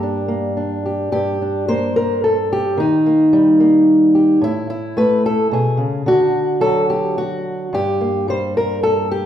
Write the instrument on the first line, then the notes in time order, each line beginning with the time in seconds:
steel-string acoustic guitar
Already playing: G2 A#3 G4
0.03 D4
0.28 A#3
0.57 D4
0.86 G4
1.12 G2 G4
1.42 D4
1.68 A#3 C5
1.96 A#4
2.24 A4
2.53 G4
2.77 D#3 D#4
3.06 A#3
3.33 G3
3.60 A#3
4.15 G4
4.41 A2 E4
4.70 E4
4.97 A3 B4
5.26 A4
5.51 B2 G#4
5.77 C#3
6.06 D3 F#4
6.61 F#3 A4
6.90 G4
7.18 F#4
7.73 G2 G4
8.01 A#3
8.28 G3 C5
8.57 A#4
8.83 A4
9.11 G4